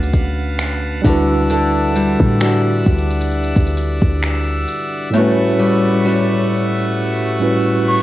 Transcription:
0.00 1.00 D2 medium
0.00 1.04 D3 medium
0.00 0.99 A3 medium
0.00 1.00 C#4 medium
0.00 1.14 C#4 medium
0.00 1.01 D4 medium
0.00 1.02 F#4 medium
0.00 1.98 F#4 medium
0.00 1.01 B4 medium
0.00 1.03 B4 medium
0.00 2.28 B4 medium
0.00 1.01 F5 medium
0.00 5.09 F#5 medium
0.00 1.01 A5 medium
0.00 closed hi-hat medium
0.13 kick loud
0.13 closed hi-hat medium
0.59 finger snap loud
0.59 closed hi-hat medium
1.02 2.16 D2 loud
1.02 1.49 D3 medium
1.02 4.63 G3 medium
1.02 4.64 D4 medium
1.02 4.65 E4 medium
1.02 5.09 D5 medium
1.02 8.03 E5 medium
1.02 5.09 E6 medium
1.02 kick loud
1.02 closed hi-hat medium
1.07 4.66 F#4 medium
1.07 4.67 B4 medium
1.50 5.14 D3 medium
1.50 closed hi-hat medium
1.95 2.40 G3 medium
1.95 closed hi-hat medium
2.20 2.84 A2 loud
2.20 kick medium
2.40 5.59 G3 medium
2.40 5.24 D4 medium
2.40 5.62 F#4 medium
2.40 finger snap loud
2.40 closed hi-hat medium
2.86 3.54 D2 loud
2.86 kick medium
2.86 closed hi-hat soft
2.98 closed hi-hat soft
3.11 closed hi-hat medium
3.21 closed hi-hat medium
3.32 closed hi-hat medium
3.44 closed hi-hat medium
3.56 4.00 D2 medium
3.56 kick loud
3.56 closed hi-hat medium
3.67 closed hi-hat medium
3.77 closed hi-hat medium
4.02 4.66 D2 loud
4.02 kick medium
4.23 finger snap loud
4.23 closed hi-hat medium
4.68 closed hi-hat medium
5.10 7.35 A2 medium
5.10 8.03 A2 medium
5.10 7.36 G3 medium
5.10 8.03 A3 medium
5.10 5.21 B3 medium
5.10 8.03 B4 medium
5.10 8.03 F#5 medium
5.10 8.03 C#6 medium
5.15 7.38 E4 medium
5.15 7.38 F#4 medium
5.15 7.39 B4 medium
5.20 7.40 C#4 medium
5.59 6.04 G3 medium
6.04 8.03 G3 medium
6.04 8.03 C#4 medium
6.04 8.03 F#4 medium
7.39 8.03 A2 medium
7.39 8.03 G3 medium
7.39 8.03 C#4 medium
7.39 8.03 E4 medium
7.39 8.03 F#4 medium
7.39 8.03 B4 medium
7.88 8.03 C#6 loud

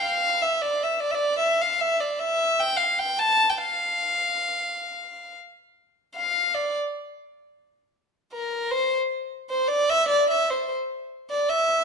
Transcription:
0.03 0.43 F5 loud
0.42 0.63 E5 medium
0.61 0.85 D5 medium
0.83 1.01 E5 medium
1.00 1.12 D5 medium
1.11 1.39 D5 loud
1.11 1.16 E5 medium
1.39 1.63 E5 loud
1.61 1.82 F5 medium
1.80 2.02 E5 medium
2.00 2.21 D5 medium
2.19 2.61 E5 medium
2.60 2.78 G5 loud
2.77 3.00 F5 medium
2.98 3.20 G5 medium
3.19 3.51 A5 loud
3.49 3.59 G5 medium
3.58 5.35 F5 medium
6.15 6.56 F5 medium
6.54 6.75 D5 medium
8.32 8.72 A#4 medium
8.71 8.92 C5 medium
9.50 9.69 C5 medium
9.68 9.91 D5 loud
9.89 10.08 E5 loud
10.09 10.30 D5 loud
10.30 10.52 E5 medium
10.50 10.72 C5 medium
11.30 11.51 D5 medium
11.49 11.84 E5 medium

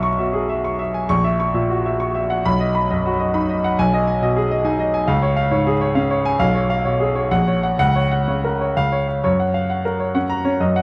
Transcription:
0.00 1.04 B1 medium
0.00 0.12 E5 medium
0.00 0.03 C#6 medium
0.00 0.27 C#6 medium
0.18 0.55 B2 soft
0.18 0.43 E5 medium
0.33 0.57 G#4 medium
0.49 0.73 E5 medium
0.64 0.88 C#6 soft
0.79 1.03 E5 medium
0.94 1.09 G#5 medium
1.09 2.40 A#1 medium
1.09 1.33 C#6 medium
1.24 1.48 E5 medium
1.40 1.64 C#6 medium
1.54 1.90 A#2 soft
1.54 1.78 E5 soft
1.70 1.94 F#4 medium
1.86 2.09 E5 soft
2.00 2.24 C#6 medium
2.15 2.38 E5 medium
2.30 2.45 F#5 medium
2.45 3.74 B1 medium
2.45 2.69 B5 medium
2.60 2.83 D#5 medium
2.75 2.98 B5 medium
2.90 3.25 F#2 medium
2.90 3.14 D#5 medium
3.05 3.28 F#4 medium
3.19 3.43 D#5 medium
3.34 3.69 D#4 soft
3.34 3.57 B5 medium
3.49 3.72 D#5 medium
3.64 3.78 F#5 medium
3.79 5.05 B1 medium
3.79 4.02 G#5 medium
3.93 4.16 D#5 medium
4.07 4.30 G#5 medium
4.22 4.57 B2 medium
4.22 4.45 D#5 medium
4.36 4.59 G#4 medium
4.51 4.74 D#5 medium
4.65 5.00 D#4 medium
4.65 4.88 G#5 medium
4.79 5.03 D#5 medium
4.94 5.08 G#5 medium
5.07 6.37 C#2 medium
5.07 5.31 F5 medium
5.22 5.46 C#5 medium
5.36 5.61 F5 medium
5.51 5.87 G#2 medium
5.51 5.75 C#5 medium
5.67 5.91 G#4 medium
5.81 6.05 C#5 medium
5.95 6.31 C#4 medium
5.95 6.19 F5 medium
6.11 6.35 C#5 medium
6.25 6.41 G#5 medium
6.39 7.28 B1 medium
6.39 6.64 F5 medium
6.54 6.79 C#5 medium
6.70 6.94 F5 medium
6.85 7.22 B2 soft
6.85 7.10 C#5 medium
7.00 7.25 G#4 medium
7.15 7.31 C#5 medium
7.31 7.78 A#1 medium
7.31 7.57 F#5 medium
7.47 7.73 C#5 medium
7.63 7.78 F#5 medium
7.79 8.73 C#2 medium
7.79 8.05 F#5 medium
7.96 8.21 C#5 medium
8.11 8.37 F#5 medium
8.28 8.66 C#3 soft
8.28 8.54 C#5 soft
8.44 8.70 A#4 medium
8.61 8.76 C#5 medium
8.77 9.23 C#2 medium
8.77 9.02 F5 medium
8.92 9.18 C#5 medium
9.08 9.24 F5 medium
9.24 10.56 F#2 medium
9.24 9.48 C#5 medium
9.39 9.64 F#5 soft
9.54 9.69 F5 medium
9.70 9.93 F#5 medium
9.85 10.09 A#4 medium
10.00 10.24 C#5 soft
10.15 10.39 C#4 soft
10.15 10.39 F#5 medium
10.29 10.54 A#5 medium
10.45 10.60 C#4 medium
10.45 10.60 C#5 medium
10.60 10.82 F#2 medium
10.60 10.82 D#5 medium
10.76 10.82 F#5 medium

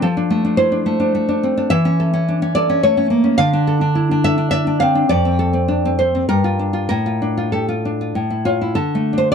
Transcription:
0.02 1.66 F3 medium
0.02 0.56 A4 loud
0.17 0.43 D4 medium
0.30 0.85 A3 medium
0.45 0.71 D4 medium
0.57 1.28 E4 medium
0.57 1.12 C5 loud
0.72 0.99 D4 medium
0.86 1.14 A3 medium
1.00 1.27 D4 medium
1.15 1.70 A3 medium
1.29 1.56 D4 medium
1.43 1.71 C4 medium
1.57 1.71 D4 medium
1.70 3.36 E3 medium
1.70 2.51 E5 loud
1.85 2.12 C#4 medium
2.00 2.55 A4 medium
2.13 2.41 C#4 medium
2.29 3.12 D4 medium
2.42 2.68 C#4 medium
2.55 3.40 A4 medium
2.55 2.82 D5 loud
2.70 2.96 C#4 medium
2.83 3.40 A3 medium
2.83 3.37 C#5 loud
2.97 3.10 C#4 medium
3.10 3.39 A#3 medium
3.24 3.39 C#4 medium
3.38 5.03 D3 medium
3.38 4.19 F5 loud
3.53 3.80 D4 medium
3.67 4.23 A4 medium
3.81 4.10 D4 medium
3.95 4.80 E4 medium
4.11 4.37 D4 medium
4.24 4.52 A4 medium
4.24 4.50 E5 loud
4.38 4.66 D4 medium
4.51 5.08 D5 medium
4.51 4.78 E5 loud
4.67 4.94 D4 medium
4.80 5.09 C4 medium
4.80 5.07 F5 loud
4.95 5.09 D4 medium
5.09 6.23 F2 medium
5.09 5.93 D5 loud
5.25 5.52 C4 medium
5.39 5.98 A4 medium
5.53 5.84 C4 medium
5.68 5.99 D4 medium
5.85 6.14 C4 medium
5.99 6.28 A4 medium
5.99 6.26 C5 medium
6.15 6.28 C4 medium
6.29 6.87 G2 medium
6.29 6.86 A#4 loud
6.44 6.72 F4 medium
6.59 6.89 D4 medium
6.73 6.88 F4 medium
6.89 8.13 A2 medium
6.89 7.50 A#4 loud
7.06 7.36 F4 medium
7.22 7.84 D4 medium
7.37 7.53 F4 medium
7.52 7.68 G4 soft
7.52 8.13 A4 medium
7.69 8.00 F4 medium
7.85 8.16 D4 medium
8.01 8.16 F4 soft
8.15 8.75 A2 medium
8.30 8.60 E4 medium
8.45 8.75 F4 medium
8.45 8.61 C#5 medium
8.61 8.76 E4 medium
8.75 9.35 D3 medium
8.75 9.17 A4 loud
8.95 9.35 A3 medium
9.13 9.35 D4 medium
9.18 9.31 C5 loud
9.32 9.35 D5 loud

